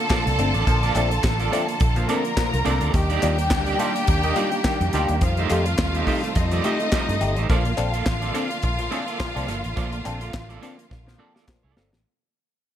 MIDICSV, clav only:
0, 0, Header, 1, 2, 480
1, 0, Start_track
1, 0, Key_signature, -2, "major"
1, 0, Tempo, 569260
1, 567, Time_signature, 4, 2, 24, 8
1, 10755, End_track
2, 0, Start_track
2, 0, Title_t, "Clav"
2, 0, Program_c, 0, 7
2, 90, Note_on_c, 0, 46, 61
2, 90, Note_on_c, 0, 53, 65
2, 210, Note_off_c, 0, 53, 0
2, 211, Note_off_c, 0, 46, 0
2, 328, Note_on_c, 0, 57, 81
2, 329, Note_on_c, 0, 60, 80
2, 331, Note_on_c, 0, 62, 88
2, 449, Note_off_c, 0, 57, 0
2, 450, Note_off_c, 0, 60, 0
2, 451, Note_off_c, 0, 62, 0
2, 467, Note_on_c, 0, 62, 53
2, 468, Note_on_c, 0, 60, 45
2, 506, Note_off_c, 0, 62, 0
2, 507, Note_off_c, 0, 60, 0
2, 571, Note_on_c, 0, 53, 65
2, 572, Note_on_c, 0, 46, 66
2, 691, Note_off_c, 0, 46, 0
2, 691, Note_off_c, 0, 53, 0
2, 703, Note_on_c, 0, 62, 47
2, 704, Note_on_c, 0, 60, 50
2, 744, Note_off_c, 0, 62, 0
2, 745, Note_off_c, 0, 60, 0
2, 804, Note_on_c, 0, 57, 92
2, 806, Note_on_c, 0, 60, 82
2, 809, Note_on_c, 0, 62, 90
2, 927, Note_off_c, 0, 57, 0
2, 928, Note_off_c, 0, 60, 0
2, 929, Note_off_c, 0, 62, 0
2, 1282, Note_on_c, 0, 57, 92
2, 1284, Note_on_c, 0, 60, 93
2, 1285, Note_on_c, 0, 62, 105
2, 1406, Note_off_c, 0, 57, 0
2, 1407, Note_off_c, 0, 60, 0
2, 1407, Note_off_c, 0, 62, 0
2, 1527, Note_on_c, 0, 60, 42
2, 1527, Note_on_c, 0, 62, 44
2, 1580, Note_off_c, 0, 60, 0
2, 1580, Note_off_c, 0, 62, 0
2, 1657, Note_on_c, 0, 46, 60
2, 1659, Note_on_c, 0, 53, 67
2, 1754, Note_off_c, 0, 46, 0
2, 1755, Note_off_c, 0, 53, 0
2, 1759, Note_on_c, 0, 57, 76
2, 1764, Note_on_c, 0, 60, 77
2, 1765, Note_on_c, 0, 62, 85
2, 1884, Note_off_c, 0, 57, 0
2, 1886, Note_off_c, 0, 60, 0
2, 1887, Note_off_c, 0, 62, 0
2, 2001, Note_on_c, 0, 46, 61
2, 2001, Note_on_c, 0, 53, 65
2, 2125, Note_off_c, 0, 46, 0
2, 2125, Note_off_c, 0, 53, 0
2, 2235, Note_on_c, 0, 57, 77
2, 2238, Note_on_c, 0, 60, 79
2, 2241, Note_on_c, 0, 62, 86
2, 2362, Note_off_c, 0, 57, 0
2, 2363, Note_off_c, 0, 60, 0
2, 2365, Note_off_c, 0, 62, 0
2, 2377, Note_on_c, 0, 62, 51
2, 2379, Note_on_c, 0, 60, 48
2, 2420, Note_off_c, 0, 62, 0
2, 2421, Note_off_c, 0, 60, 0
2, 2486, Note_on_c, 0, 51, 66
2, 2607, Note_off_c, 0, 51, 0
2, 2621, Note_on_c, 0, 65, 51
2, 2622, Note_on_c, 0, 62, 49
2, 2662, Note_off_c, 0, 62, 0
2, 2662, Note_off_c, 0, 65, 0
2, 2720, Note_on_c, 0, 55, 93
2, 2722, Note_on_c, 0, 62, 75
2, 2722, Note_on_c, 0, 65, 101
2, 2844, Note_off_c, 0, 55, 0
2, 2845, Note_off_c, 0, 62, 0
2, 2845, Note_off_c, 0, 65, 0
2, 3194, Note_on_c, 0, 55, 102
2, 3198, Note_on_c, 0, 62, 95
2, 3201, Note_on_c, 0, 65, 109
2, 3321, Note_off_c, 0, 55, 0
2, 3322, Note_off_c, 0, 62, 0
2, 3324, Note_off_c, 0, 65, 0
2, 3440, Note_on_c, 0, 62, 43
2, 3441, Note_on_c, 0, 65, 51
2, 3495, Note_off_c, 0, 62, 0
2, 3496, Note_off_c, 0, 65, 0
2, 3576, Note_on_c, 0, 51, 59
2, 3673, Note_off_c, 0, 51, 0
2, 3675, Note_on_c, 0, 55, 85
2, 3679, Note_on_c, 0, 62, 70
2, 3681, Note_on_c, 0, 65, 95
2, 3801, Note_off_c, 0, 55, 0
2, 3803, Note_off_c, 0, 62, 0
2, 3804, Note_off_c, 0, 65, 0
2, 3921, Note_on_c, 0, 51, 64
2, 4044, Note_off_c, 0, 51, 0
2, 4163, Note_on_c, 0, 55, 89
2, 4164, Note_on_c, 0, 62, 69
2, 4167, Note_on_c, 0, 65, 95
2, 4284, Note_off_c, 0, 55, 0
2, 4285, Note_off_c, 0, 62, 0
2, 4286, Note_off_c, 0, 65, 0
2, 4295, Note_on_c, 0, 62, 40
2, 4295, Note_on_c, 0, 65, 46
2, 4338, Note_off_c, 0, 62, 0
2, 4338, Note_off_c, 0, 65, 0
2, 4404, Note_on_c, 0, 53, 71
2, 4525, Note_off_c, 0, 53, 0
2, 4537, Note_on_c, 0, 67, 53
2, 4538, Note_on_c, 0, 63, 43
2, 4579, Note_off_c, 0, 63, 0
2, 4579, Note_off_c, 0, 67, 0
2, 4638, Note_on_c, 0, 57, 84
2, 4642, Note_on_c, 0, 63, 85
2, 4644, Note_on_c, 0, 67, 93
2, 4762, Note_off_c, 0, 57, 0
2, 4764, Note_off_c, 0, 63, 0
2, 4765, Note_off_c, 0, 67, 0
2, 5113, Note_on_c, 0, 57, 98
2, 5115, Note_on_c, 0, 63, 90
2, 5119, Note_on_c, 0, 67, 102
2, 5239, Note_off_c, 0, 57, 0
2, 5240, Note_off_c, 0, 63, 0
2, 5242, Note_off_c, 0, 67, 0
2, 5361, Note_on_c, 0, 63, 40
2, 5361, Note_on_c, 0, 67, 47
2, 5414, Note_off_c, 0, 63, 0
2, 5414, Note_off_c, 0, 67, 0
2, 5499, Note_on_c, 0, 53, 62
2, 5593, Note_off_c, 0, 53, 0
2, 5600, Note_on_c, 0, 57, 84
2, 5603, Note_on_c, 0, 63, 74
2, 5604, Note_on_c, 0, 67, 98
2, 5722, Note_off_c, 0, 57, 0
2, 5724, Note_off_c, 0, 63, 0
2, 5724, Note_off_c, 0, 67, 0
2, 5843, Note_on_c, 0, 53, 61
2, 5964, Note_off_c, 0, 53, 0
2, 6076, Note_on_c, 0, 57, 87
2, 6079, Note_on_c, 0, 63, 64
2, 6080, Note_on_c, 0, 67, 89
2, 6200, Note_off_c, 0, 57, 0
2, 6201, Note_off_c, 0, 63, 0
2, 6202, Note_off_c, 0, 67, 0
2, 6215, Note_on_c, 0, 67, 46
2, 6216, Note_on_c, 0, 63, 46
2, 6257, Note_off_c, 0, 63, 0
2, 6257, Note_off_c, 0, 67, 0
2, 6317, Note_on_c, 0, 46, 67
2, 6320, Note_on_c, 0, 53, 68
2, 6441, Note_off_c, 0, 46, 0
2, 6442, Note_off_c, 0, 53, 0
2, 6453, Note_on_c, 0, 62, 47
2, 6454, Note_on_c, 0, 69, 51
2, 6495, Note_off_c, 0, 62, 0
2, 6496, Note_off_c, 0, 69, 0
2, 6552, Note_on_c, 0, 62, 73
2, 6553, Note_on_c, 0, 60, 85
2, 6556, Note_on_c, 0, 69, 88
2, 6678, Note_off_c, 0, 62, 0
2, 6679, Note_off_c, 0, 60, 0
2, 6680, Note_off_c, 0, 69, 0
2, 7032, Note_on_c, 0, 60, 98
2, 7035, Note_on_c, 0, 62, 81
2, 7035, Note_on_c, 0, 69, 105
2, 7158, Note_off_c, 0, 60, 0
2, 7159, Note_off_c, 0, 62, 0
2, 7160, Note_off_c, 0, 69, 0
2, 7274, Note_on_c, 0, 69, 42
2, 7275, Note_on_c, 0, 62, 44
2, 7330, Note_off_c, 0, 69, 0
2, 7331, Note_off_c, 0, 62, 0
2, 7409, Note_on_c, 0, 46, 60
2, 7409, Note_on_c, 0, 53, 62
2, 7507, Note_off_c, 0, 53, 0
2, 7508, Note_off_c, 0, 46, 0
2, 7513, Note_on_c, 0, 60, 78
2, 7516, Note_on_c, 0, 62, 81
2, 7519, Note_on_c, 0, 69, 89
2, 7638, Note_off_c, 0, 60, 0
2, 7640, Note_off_c, 0, 62, 0
2, 7641, Note_off_c, 0, 69, 0
2, 7755, Note_on_c, 0, 46, 62
2, 7757, Note_on_c, 0, 53, 57
2, 7879, Note_off_c, 0, 46, 0
2, 7881, Note_off_c, 0, 53, 0
2, 7887, Note_on_c, 0, 60, 79
2, 7890, Note_on_c, 0, 62, 72
2, 7891, Note_on_c, 0, 69, 82
2, 7980, Note_off_c, 0, 69, 0
2, 7982, Note_off_c, 0, 62, 0
2, 7987, Note_off_c, 0, 60, 0
2, 7990, Note_on_c, 0, 69, 46
2, 7992, Note_on_c, 0, 62, 43
2, 8048, Note_off_c, 0, 69, 0
2, 8049, Note_off_c, 0, 62, 0
2, 8236, Note_on_c, 0, 46, 64
2, 8236, Note_on_c, 0, 53, 66
2, 8360, Note_off_c, 0, 46, 0
2, 8360, Note_off_c, 0, 53, 0
2, 8372, Note_on_c, 0, 62, 51
2, 8372, Note_on_c, 0, 69, 57
2, 8415, Note_off_c, 0, 62, 0
2, 8415, Note_off_c, 0, 69, 0
2, 8474, Note_on_c, 0, 60, 90
2, 8478, Note_on_c, 0, 62, 79
2, 8483, Note_on_c, 0, 69, 88
2, 8599, Note_off_c, 0, 60, 0
2, 8601, Note_off_c, 0, 62, 0
2, 8604, Note_off_c, 0, 69, 0
2, 8957, Note_on_c, 0, 60, 93
2, 8959, Note_on_c, 0, 62, 89
2, 8964, Note_on_c, 0, 69, 108
2, 9081, Note_off_c, 0, 60, 0
2, 9082, Note_off_c, 0, 62, 0
2, 9085, Note_off_c, 0, 69, 0
2, 9200, Note_on_c, 0, 62, 43
2, 9201, Note_on_c, 0, 69, 45
2, 9254, Note_off_c, 0, 62, 0
2, 9254, Note_off_c, 0, 69, 0
2, 9332, Note_on_c, 0, 46, 60
2, 9333, Note_on_c, 0, 53, 58
2, 9429, Note_off_c, 0, 46, 0
2, 9430, Note_off_c, 0, 53, 0
2, 9435, Note_on_c, 0, 60, 77
2, 9436, Note_on_c, 0, 62, 72
2, 9440, Note_on_c, 0, 69, 96
2, 9560, Note_off_c, 0, 60, 0
2, 9561, Note_off_c, 0, 62, 0
2, 9563, Note_off_c, 0, 69, 0
2, 9678, Note_on_c, 0, 53, 57
2, 9681, Note_on_c, 0, 46, 58
2, 9802, Note_off_c, 0, 53, 0
2, 9803, Note_off_c, 0, 46, 0
2, 9918, Note_on_c, 0, 60, 71
2, 9922, Note_on_c, 0, 62, 67
2, 9924, Note_on_c, 0, 69, 80
2, 10042, Note_off_c, 0, 60, 0
2, 10044, Note_off_c, 0, 62, 0
2, 10045, Note_off_c, 0, 69, 0
2, 10057, Note_on_c, 0, 62, 43
2, 10057, Note_on_c, 0, 69, 44
2, 10099, Note_off_c, 0, 62, 0
2, 10099, Note_off_c, 0, 69, 0
2, 10755, End_track
0, 0, End_of_file